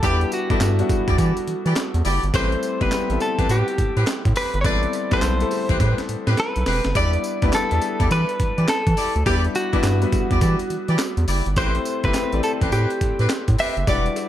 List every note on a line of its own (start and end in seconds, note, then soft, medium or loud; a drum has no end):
0.00 0.25 E2 loud
0.00 0.03 G3 medium
0.00 0.41 G3 medium
0.00 0.03 B3 medium
0.00 0.41 B3 medium
0.00 0.03 D4 medium
0.00 0.41 D4 medium
0.00 0.04 E4 medium
0.00 0.20 E4 loud
0.00 0.41 E4 medium
0.00 0.80 F#4 medium
0.00 0.20 G4 medium
0.00 0.04 B4 medium
0.00 0.20 D5 loud
0.00 kick loud
0.00 closed hi-hat medium
0.00 tambourine medium
0.00 cowbell medium
0.04 0.33 G4 loud
0.04 0.41 B4 medium
0.21 closed hi-hat medium
0.32 2.02 F#4 medium
0.32 closed hi-hat medium
0.32 tambourine medium
0.50 0.54 G2 medium
0.50 0.73 G3 medium
0.50 0.73 B3 medium
0.50 0.73 D4 medium
0.50 0.60 E4 medium
0.50 0.73 E4 medium
0.50 0.60 G4 medium
0.50 0.73 A4 medium
0.50 0.60 D5 medium
0.50 kick loud
0.50 closed hi-hat medium
0.60 0.83 G2 loud
0.60 snare loud
0.60 clap loud
0.60 closed hi-hat medium
0.60 tambourine loud
0.60 cowbell medium
0.79 1.72 G3 medium
0.79 1.72 B3 medium
0.79 1.72 D4 medium
0.79 1.73 E4 medium
0.79 1.73 F#4 medium
0.79 closed hi-hat medium
0.89 kick loud
0.89 closed hi-hat medium
0.89 tambourine medium
0.89 cowbell medium
1.07 1.16 E2 medium
1.07 1.17 E4 medium
1.07 1.17 G4 medium
1.07 1.17 D5 medium
1.07 kick medium
1.07 closed hi-hat medium
1.18 1.32 E3 loud
1.18 1.36 E4 medium
1.18 1.36 G4 medium
1.18 1.36 D5 medium
1.18 kick medium
1.18 closed hi-hat medium
1.18 tambourine medium
1.18 cowbell medium
1.37 closed hi-hat medium
1.47 1.55 E3 soft
1.47 closed hi-hat medium
1.65 1.74 E3 medium
1.65 1.75 E4 medium
1.65 1.75 G4 medium
1.65 1.76 D5 medium
1.65 closed hi-hat soft
1.75 snare loud
1.75 clap medium
1.75 closed hi-hat medium
1.75 tambourine medium
1.75 cowbell medium
1.94 2.02 E2 loud
1.94 closed hi-hat medium
2.05 2.19 F#1 loud
2.05 2.22 E4 medium
2.05 2.22 G4 medium
2.05 2.22 D5 medium
2.05 open hi-hat medium
2.05 tambourine medium
2.23 2.31 G1 medium
2.23 closed hi-hat soft
2.34 2.56 A1 loud
2.34 2.71 G3 medium
2.34 2.71 A3 medium
2.34 2.51 C4 loud
2.34 2.72 C4 medium
2.34 2.72 E4 medium
2.34 2.51 G4 medium
2.34 2.72 A4 medium
2.34 2.51 B4 loud
2.34 2.82 C5 loud
2.34 kick loud
2.34 closed hi-hat medium
2.34 tambourine medium
2.34 cowbell medium
2.52 closed hi-hat soft
2.63 closed hi-hat medium
2.63 tambourine medium
2.81 2.89 G1 medium
2.81 3.03 G3 medium
2.81 3.04 B3 medium
2.81 2.91 C4 medium
2.81 3.04 C4 medium
2.81 3.04 E4 medium
2.81 2.91 G4 medium
2.81 3.04 G4 medium
2.81 2.91 B4 medium
2.81 3.21 B4 loud
2.81 kick loud
2.81 closed hi-hat medium
2.91 snare loud
2.91 clap loud
2.91 closed hi-hat medium
2.91 tambourine medium
2.91 cowbell medium
3.10 3.18 A1 medium
3.10 4.03 G3 medium
3.10 4.03 B3 medium
3.10 4.03 C4 medium
3.10 4.03 E4 medium
3.10 4.03 A4 medium
3.10 closed hi-hat medium
3.20 3.51 A4 medium
3.20 closed hi-hat medium
3.20 tambourine medium
3.20 cowbell medium
3.38 3.47 A1 medium
3.38 3.48 C4 medium
3.38 3.48 G4 medium
3.38 3.48 B4 medium
3.38 kick medium
3.38 closed hi-hat medium
3.49 3.63 A2 loud
3.49 3.66 C4 medium
3.49 3.67 G4 medium
3.49 4.04 G4 medium
3.49 3.67 B4 medium
3.49 closed hi-hat medium
3.49 tambourine medium
3.49 cowbell medium
3.68 closed hi-hat medium
3.78 3.86 A2 medium
3.78 kick medium
3.78 closed hi-hat medium
3.96 4.05 A2 loud
3.96 4.06 C4 medium
3.96 4.06 G4 medium
3.96 4.06 B4 medium
3.96 closed hi-hat medium
4.06 snare loud
4.06 clap medium
4.06 closed hi-hat medium
4.06 tambourine medium
4.06 cowbell medium
4.25 4.33 A2 medium
4.25 kick loud
4.25 closed hi-hat medium
4.35 4.53 C4 medium
4.35 4.53 G4 medium
4.35 4.53 B4 medium
4.35 4.58 B4 loud
4.35 open hi-hat loud
4.35 tambourine medium
4.54 4.66 G1 loud
4.54 closed hi-hat soft
4.61 4.87 A1 loud
4.61 5.02 G3 medium
4.61 5.02 B3 medium
4.61 4.82 C4 loud
4.61 5.02 C4 medium
4.61 5.02 E4 medium
4.61 4.82 G4 medium
4.61 4.82 B4 loud
4.61 4.65 C#5 medium
4.61 kick loud
4.61 closed hi-hat medium
4.61 tambourine medium
4.61 cowbell medium
4.66 5.03 A4 medium
4.66 5.13 D5 loud
4.83 closed hi-hat medium
4.93 closed hi-hat medium
4.93 tambourine medium
5.11 5.16 B1 soft
5.11 5.34 G3 medium
5.11 5.34 B3 medium
5.11 5.21 C4 medium
5.11 5.34 C4 medium
5.11 5.35 E4 medium
5.11 5.22 G4 medium
5.11 5.35 A4 medium
5.11 5.22 B4 medium
5.11 5.95 C5 loud
5.11 kick loud
5.11 snare medium
5.11 closed hi-hat medium
5.22 5.44 B1 medium
5.22 snare loud
5.22 clap medium
5.22 closed hi-hat medium
5.22 tambourine loud
5.22 cowbell medium
5.40 6.33 G3 medium
5.40 6.34 A3 medium
5.40 6.34 C4 medium
5.40 6.34 E4 medium
5.40 6.34 A4 medium
5.40 closed hi-hat medium
5.51 open hi-hat medium
5.51 tambourine medium
5.51 cowbell medium
5.69 5.77 A1 medium
5.69 5.78 C4 medium
5.69 5.79 G4 medium
5.69 5.79 B4 medium
5.69 kick loud
5.69 closed hi-hat medium
5.79 5.94 A2 loud
5.79 5.97 C4 medium
5.79 5.97 G4 medium
5.79 5.97 B4 medium
5.79 kick medium
5.79 snare medium
5.79 closed hi-hat medium
5.79 cowbell medium
5.98 snare medium
5.98 closed hi-hat medium
6.09 6.16 A2 soft
6.09 closed hi-hat medium
6.27 6.35 A2 loud
6.27 6.37 C4 medium
6.27 6.37 G4 medium
6.27 6.37 B4 medium
6.27 snare medium
6.27 closed hi-hat medium
6.37 6.96 B4 loud
6.37 snare medium
6.37 closed hi-hat medium
6.37 cowbell medium
6.56 6.64 B1 medium
6.56 closed hi-hat medium
6.66 6.81 E1 medium
6.66 6.84 C4 medium
6.66 6.84 G4 medium
6.66 6.84 B4 medium
6.66 snare loud
6.66 open hi-hat medium
6.85 6.93 F#1 medium
6.85 snare medium
6.85 closed hi-hat soft
6.95 7.17 E2 loud
6.95 7.33 G3 medium
6.95 7.33 B3 medium
6.95 7.33 D4 medium
6.95 7.12 E4 loud
6.95 7.33 E4 medium
6.95 7.13 G4 loud
6.95 7.34 B4 medium
6.95 7.13 D5 loud
6.95 7.54 D5 loud
6.95 kick loud
6.95 closed hi-hat medium
6.95 tambourine medium
6.95 cowbell medium
7.13 closed hi-hat medium
7.24 closed hi-hat medium
7.24 tambourine medium
7.42 7.51 D2 medium
7.42 7.65 G3 medium
7.42 7.65 B3 medium
7.42 7.65 D4 medium
7.42 7.52 E4 medium
7.42 7.65 E4 medium
7.42 7.52 G4 medium
7.42 7.65 B4 medium
7.42 7.53 D5 medium
7.42 kick loud
7.42 closed hi-hat medium
7.53 8.12 A4 medium
7.53 snare loud
7.53 clap medium
7.53 closed hi-hat medium
7.53 tambourine medium
7.53 cowbell medium
7.71 7.80 E2 medium
7.71 8.64 G3 medium
7.71 8.64 B3 medium
7.71 8.65 D4 medium
7.71 8.65 E4 medium
7.71 8.65 A4 medium
7.71 closed hi-hat medium
7.82 closed hi-hat medium
7.82 tambourine medium
7.82 cowbell medium
8.00 8.08 E2 medium
8.00 8.09 E4 medium
8.00 8.09 G4 medium
8.00 8.10 D5 medium
8.00 kick loud
8.00 closed hi-hat medium
8.10 8.25 E3 medium
8.10 8.28 E4 medium
8.10 8.28 G4 medium
8.10 8.69 B4 loud
8.10 8.28 D5 medium
8.10 closed hi-hat medium
8.10 tambourine medium
8.10 cowbell medium
8.29 closed hi-hat medium
8.40 8.47 E3 medium
8.40 kick medium
8.40 closed hi-hat medium
8.57 8.66 E3 loud
8.57 8.68 E4 medium
8.57 8.68 G4 medium
8.57 8.68 D5 medium
8.57 closed hi-hat medium
8.68 9.23 A4 loud
8.68 snare loud
8.68 clap medium
8.68 closed hi-hat medium
8.68 tambourine medium
8.68 cowbell medium
8.87 8.95 E3 medium
8.87 kick loud
8.87 closed hi-hat medium
8.97 9.14 E4 medium
8.97 9.14 G4 medium
8.97 9.15 D5 loud
8.97 open hi-hat medium
8.97 tambourine medium
9.16 9.24 D2 medium
9.16 closed hi-hat soft
9.26 9.48 E2 loud
9.26 9.64 G3 medium
9.26 9.64 B3 medium
9.26 9.64 D4 medium
9.26 9.43 E4 loud
9.26 9.64 E4 medium
9.26 9.43 G4 medium
9.26 9.34 G4 loud
9.26 9.64 B4 medium
9.26 9.44 D5 loud
9.26 kick loud
9.26 closed hi-hat medium
9.26 tambourine medium
9.26 cowbell medium
9.44 closed hi-hat medium
9.55 11.24 F#4 medium
9.55 closed hi-hat medium
9.55 tambourine medium
9.72 9.78 G2 soft
9.72 9.96 G3 medium
9.72 9.96 B3 medium
9.72 9.96 D4 medium
9.72 9.83 E4 medium
9.72 9.96 E4 medium
9.72 9.83 G4 medium
9.72 9.96 B4 loud
9.72 9.83 D5 medium
9.72 kick loud
9.72 closed hi-hat medium
9.83 10.06 G2 loud
9.83 snare loud
9.83 clap medium
9.83 closed hi-hat medium
9.83 tambourine loud
9.83 cowbell medium
10.02 10.95 G3 medium
10.02 10.95 B3 medium
10.02 10.95 D4 medium
10.02 10.95 E4 medium
10.02 10.96 B4 medium
10.02 closed hi-hat medium
10.12 kick loud
10.12 closed hi-hat medium
10.12 tambourine medium
10.12 cowbell medium
10.30 10.39 E2 medium
10.30 10.40 E4 medium
10.30 10.40 G4 medium
10.30 10.40 D5 medium
10.30 kick loud
10.30 closed hi-hat medium
10.41 10.56 E3 loud
10.41 10.59 E4 medium
10.41 10.59 G4 medium
10.41 10.59 D5 medium
10.41 kick medium
10.41 closed hi-hat medium
10.41 tambourine medium
10.41 cowbell medium
10.59 closed hi-hat medium
10.70 10.78 E3 medium
10.70 closed hi-hat medium
10.88 10.97 E3 medium
10.88 10.98 E4 medium
10.88 10.99 G4 medium
10.88 10.99 D5 medium
10.88 closed hi-hat medium
10.99 snare loud
10.99 clap medium
10.99 closed hi-hat medium
10.99 tambourine medium
10.99 cowbell medium
11.17 11.25 E2 loud
11.17 closed hi-hat medium
11.28 11.42 F#1 loud
11.28 11.45 E4 medium
11.28 11.45 G4 medium
11.28 11.46 D5 medium
11.28 open hi-hat medium
11.28 tambourine medium
11.46 11.58 G1 medium
11.46 closed hi-hat medium
11.56 11.79 A1 loud
11.56 11.95 A3 medium
11.56 11.74 C4 loud
11.56 11.95 C4 medium
11.56 11.95 E4 medium
11.56 11.74 G4 medium
11.56 11.95 G4 medium
11.56 11.74 B4 loud
11.56 12.01 C5 loud
11.56 11.95 C5 medium
11.56 kick loud
11.56 closed hi-hat medium
11.56 tambourine medium
11.56 cowbell medium
11.75 closed hi-hat medium
11.85 closed hi-hat medium
11.85 tambourine medium
12.04 12.12 G1 medium
12.04 12.26 A3 medium
12.04 12.14 C4 medium
12.04 12.27 C4 medium
12.04 12.27 E4 medium
12.04 12.14 G4 medium
12.04 12.27 G4 medium
12.04 12.14 B4 medium
12.04 12.43 B4 loud
12.04 12.27 B4 medium
12.04 kick loud
12.04 closed hi-hat soft
12.14 snare loud
12.14 clap medium
12.14 closed hi-hat medium
12.14 tambourine loud
12.14 cowbell medium
12.32 12.41 A1 medium
12.32 13.26 A3 medium
12.32 13.26 C4 medium
12.32 13.26 E4 medium
12.32 13.26 G4 medium
12.32 13.26 D5 medium
12.32 closed hi-hat medium
12.43 12.51 A4 loud
12.43 closed hi-hat medium
12.43 tambourine medium
12.43 cowbell medium
12.61 12.70 A1 medium
12.61 12.71 C4 medium
12.61 12.71 G4 medium
12.61 12.71 B4 medium
12.61 kick loud
12.61 closed hi-hat medium
12.72 12.86 A2 loud
12.72 12.89 C4 medium
12.72 12.90 G4 medium
12.72 13.26 G4 medium
12.72 12.90 B4 medium
12.72 closed hi-hat medium
12.72 tambourine medium
12.72 cowbell medium
12.90 closed hi-hat medium
13.01 13.09 A2 medium
13.01 kick medium
13.01 closed hi-hat medium
13.19 13.27 A2 loud
13.19 13.29 C4 medium
13.19 13.29 G4 medium
13.19 13.30 B4 medium
13.19 closed hi-hat medium
13.29 snare loud
13.29 clap medium
13.29 closed hi-hat medium
13.29 tambourine medium
13.29 cowbell medium
13.48 13.56 A2 loud
13.48 kick medium
13.48 closed hi-hat medium
13.58 13.76 C4 medium
13.58 13.76 G4 medium
13.58 13.76 B4 medium
13.58 13.89 E5 loud
13.58 open hi-hat medium
13.58 tambourine medium
13.77 13.85 F#1 loud
13.77 closed hi-hat soft
13.87 14.10 E1 loud
13.87 14.25 G3 medium
13.87 14.25 D4 medium
13.87 14.25 E4 medium
13.87 14.05 F#4 loud
13.87 14.25 F#4 medium
13.87 14.05 G4 medium
13.87 14.26 B4 medium
13.87 14.05 D5 loud
13.87 14.29 D5 loud
13.87 kick loud
13.87 closed hi-hat medium
13.87 tambourine medium
13.87 cowbell medium
14.06 closed hi-hat medium
14.16 closed hi-hat medium
14.16 tambourine medium
14.16 cowbell medium